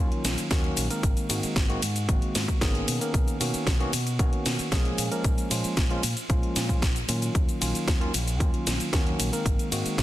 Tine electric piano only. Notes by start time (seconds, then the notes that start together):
Already playing: D#3 F#3
0.00 A#3 C#4 F4
0.50 D#3 F#3 A#3 C#4 F#4
0.90 D#3 G#3 A#3 C4 A#4
1.29 D#3 G#3 A#3 C4 F#4
1.69 D#3 G#3 A#3 C4 F#4
2.08 D#3 G#3 A#3 C4 F#4
2.61 D#3 A#3 B3 C#4 G#4
3.00 D#3 A#3 B3 C#4 A#4
3.40 D#3 A#3 B3 C#4 F#4
3.80 D#3 A#3 B3 C#4 F#4
4.19 D#3 A#3 B3 C#4 F#4
4.71 F3 G#3 A#3 C#4 G#4
5.11 F3 G#3 A#3 C#4 A#4
5.50 F3 G#3 A#3 C#4 F4
5.90 F3 G#3 A#3 C#4 F4
6.29 F3 G#3 A#3 C#4 F4
6.69 F3 G#3 A#3 C#4 F4
7.08 D#3 F#3 A#3 C#4 F4
7.61 D#3 F#3 A#3 C#4 F4
8.00 D#3 F#3 A#3 C#4 F4
8.39 D#3 F#3 A#3 C#4 F4
8.92 D#3 F#3 A#3 C#4 F#4
9.32 D#3 G#3 A#3 C4 A#4
9.71 D#3 G#3 A#3 C4 F#4